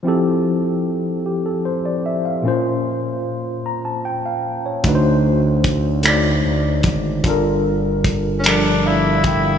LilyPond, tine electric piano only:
\new Staff \with { instrumentName = "Tine electric piano" } { \time 6/8 \key f \major \tempo 4. = 50 << { r4. g'16 a'16 c''16 d''16 e''16 f''16~ | f''16 r4 r16 bes''16 a''16 g''16 f''8 des''16~ | des''16 r2 r8. | r2 <d'' f''>8 g''16 f''16 | } \\ { <f c' e' g' a'>4. r4. | <bes, bes des' f' c''>4. r4. | <d a ees' fis' b' c''>4. <d a ees' fis' d''>4. | <g d' f' a' bes'>4. <f g d' a' bes'>4. | } >> }